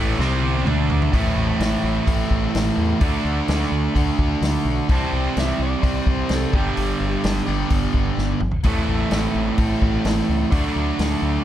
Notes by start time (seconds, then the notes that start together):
Already playing: A1 A2 E3 A3
0.18 C2 C3 G3 C4, snare
0.43 high tom
0.54 high tom
0.65 D2 D3 A3 D4, mid tom
0.90 floor tom
1.02 floor tom
1.12 A1 A2 E3 A3 C4 E4, kick, open hi-hat
1.36 A1
1.59 A1, snare, open hi-hat
1.83 A1
2.07 A1 A2 E3 A3 C4 E4, kick, open hi-hat
2.31 A1, kick
2.55 A1, snare, open hi-hat
2.77 E2
3.01 D2 D3 A3 D4 F#4, kick, open hi-hat
3.25 D2
3.48 D2, snare, open hi-hat
3.62 snare
3.72 D2
3.94 D2 D3 A3 D4 F#4, kick, open hi-hat
4.19 D2, kick
4.41 D2, snare, open hi-hat
4.65 B1
4.88 C2 C3 E3 G3 C4 G4 A5, kick, open hi-hat
5.12 C2 G5
5.37 C2 E5, snare, open hi-hat
5.59 C2 D5
5.82 C2 C3 E3 G3 C4 G4, kick, open hi-hat
6.06 C2, kick
6.10 C5
6.29 C2, snare, open hi-hat
6.35 A4
6.52 G1 G2 D3 G3 B3 D4 G4, kick
6.57 G4
6.77 G1, open hi-hat
7.00 G1
7.24 G1, snare, open hi-hat
7.47 G1 G2 D3 G3 B3 D4 G4
7.70 G1, kick, open hi-hat
7.94 G1, kick
8.17 G1, snare
8.40 G#1, mid tom
8.51 floor tom
8.63 A1 A2 E3 A3 C4 E4 A4, kick, open hi-hat
8.88 A1
9.11 A1, snare, open hi-hat
9.35 A1
9.58 A1 A2 E3 C4 E4 A4, kick, open hi-hat
9.82 A1, kick
10.05 A1, snare, open hi-hat
10.29 C#2
10.51 D2 D3 F#3 A3 D4 F#4, kick, open hi-hat
10.76 D2
10.99 D2, snare, open hi-hat
11.22 D2